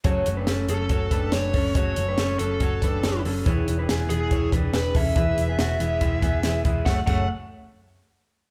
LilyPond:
<<
  \new Staff \with { instrumentName = "Lead electric guitar" } { \time 4/4 \key fis \minor \tempo 4 = 141 r4. a'4. cis''4 | cis''4. a'2 r8 | r4. gis'4 r8 b'8 e''8~ | e''2.~ e''8 r8 |
fis''8 fis''8 r2. | }
  \new Staff \with { instrumentName = "Clean electric guitar" } { \time 4/4 \key fis \minor <fis' cis''>8. <d' b'>16 <cis' a'>8 <cis' a'>8 <fis' cis''>8 <d' b'>4 <cis' a'>8 | <fis' cis''>8. <d' b'>16 <cis' a'>8 <cis' a'>8 <fis' cis''>8 <d' b'>4 <cis' a'>8 | <e' cis''>8. <d' b'>16 <b gis'>8 <b gis'>8 <e' cis''>8 <d' b'>4 <cis' a'>8 | <e' b'>8. <b gis'>16 <b fis'>8 <gis e'>8 <gis e'>8 <b gis'>4 <gis e'>8 |
a8 a8 r2. | }
  \new Staff \with { instrumentName = "Steel-string acoustic guitar" } { \time 4/4 \key fis \minor <fis, cis fis a cis' a'>8 <fis a cis' a'>4 <fis a cis' a'>4 <fis a cis' a'>8 <fis a cis' a'>8 <fis a cis' a'>8 | <fis, cis fis a cis' a'>8 <fis a cis' a'>4 <fis a cis' a'>4 <fis a cis' a'>8 <fis a cis' a'>8 <fis a cis' a'>8 | <e b e' gis'>8 <e b e' gis'>4 <e b e' gis'>4 <e b e' gis'>8 <e b e' gis'>8 <e b e' gis'>8 | <e b e' gis'>8 <e b e' gis'>4 <e b e' gis'>4 <e b e' gis'>8 <e b e' gis'>8 <e b e' gis'>8 |
<fis, cis fis a cis' fis'>8 <fis, cis fis a cis' fis'>8 r2. | }
  \new Staff \with { instrumentName = "Picked electric bass" } { \clef bass \time 4/4 \key fis \minor fis,,8 fis,,8 fis,,8 fis,,8 fis,,8 fis,,8 fis,,8 fis,,8 | fis,,8 fis,,8 fis,,8 fis,,8 fis,,8 fis,,8 fis,,8 fis,,8 | e,,8 e,,8 e,,8 e,,8 e,,8 e,,8 e,,8 e,,8 | e,,8 e,,8 e,,8 e,,8 e,,8 e,,8 e,,8 e,,8 |
fis,,8 fis,,8 r2. | }
  \new DrumStaff \with { instrumentName = "Drums" } \drummode { \time 4/4 <hh bd>8 hh8 <hh sn>8 hh8 <hh bd>8 <hh bd>8 <hh sn>8 <hho bd>8 | <hh bd>8 hh8 <hh sn>8 hh8 <hh bd>8 <hh bd>8 <hh sn>8 hho8 | <hh bd>8 hh8 <hh sn>8 hh8 <hh bd>8 <hh bd>8 <hh sn>8 <hho bd>8 | <hh bd>8 hh8 <hh sn>8 hh8 <hh bd>8 <hh bd>8 <hh sn>8 <hh bd>8 |
<bd sn>8 <cymc bd>8 r4 r4 r4 | }
>>